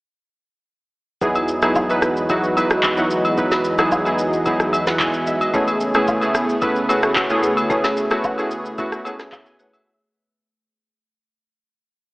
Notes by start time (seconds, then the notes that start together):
1.21 E2 E3 F#3 G#3 B3 D#4 E4 F#4 G#4 D#5, kick, shaker
1.35 high agogo, shaker
1.48 shaker
1.62 F#3 B3 D#4 E4 G#4, cross-stick, high agogo, shaker
1.75 kick, low woodblock, shaker
1.89 F#3 B3 D#4 E4 B4, high agogo, shaker
2.02 cross-stick, shaker
2.17 shaker
2.29 F#3 B3 D#4 E4 F#4, kick, high agogo, shaker
2.44 shaker
2.56 F#3 B3 D#4 E4 B4, high agogo, shaker
2.70 cross-stick, shaker
2.83 kick, clap, high agogo, shaker
2.97 F#3 B3 D#4 E4 F#4, shaker
3.10 shaker
3.25 high agogo, shaker
3.37 F#3 B3 D#4 E4 B4, kick, shaker
3.51 snare, high agogo, shaker
3.64 shaker
3.78 F#3 B3 D#4 E4 G#4, cross-stick, high agogo, shaker
3.92 kick, low woodblock, shaker
4.05 F#3 B3 D#4 E4 G#4, high agogo, shaker
4.18 shaker
4.33 shaker
4.46 F#3 B3 D#4 E4 G#4, kick, high agogo, shaker
4.60 cross-stick, shaker
4.73 E5, high agogo, shaker
4.87 F#5, snare, shaker
5.00 G#5, kick, clap, high agogo, shaker
5.14 shaker
5.27 E5, shaker
5.41 D#5, high agogo, shaker
5.54 C#3 A3 B3 C#4 E4 G#4 B4 C#5, kick, shaker
5.68 high agogo, shaker
5.80 shaker
5.94 A3 B3 C#4 E4 G#4 B4 C#5, cross-stick, high agogo, shaker
6.08 kick, low woodblock, shaker
6.21 A3 B3 C#4 E4 G#4, high agogo, shaker
6.35 cross-stick, shaker
6.49 shaker
6.62 A3 B3 C#4 E4 B4, kick, high agogo, shaker
6.76 shaker
6.89 A3 B3 C#4 E4 F#4 G#4 B4 C#5, high agogo, shaker
7.03 cross-stick, shaker
7.16 kick, clap, high agogo, shaker
7.30 A3 B3 C#4 E4 G#4, shaker
7.43 A3 G#4 B4 C#5, shaker
7.57 high agogo, shaker
7.70 A3 B3 C#4 E4 G#4 B4 C#5, kick, shaker
7.84 snare, high agogo, shaker
7.97 shaker
8.11 A3 B3 C#4 E4 F#4 G#4 B4 C#5, cross-stick, high agogo, shaker
8.24 kick, low woodblock, shaker
8.38 A3 B3 C#4 E4 G#4, high agogo, shaker
8.51 shaker
8.66 shaker
8.78 A3 B3 C#4 E4 F#4, kick, high agogo, shaker
8.92 cross-stick, shaker
9.05 A3 B3 C#4 E4 G#4 B4 C#5, high agogo, shaker
9.19 cross-stick, snare, shaker
9.32 E5, kick, clap, high agogo, low woodblock, shaker
9.46 G#5, shaker
9.59 A3 G#4 B4 C#5 F#5, shaker
9.73 E5, high agogo, shaker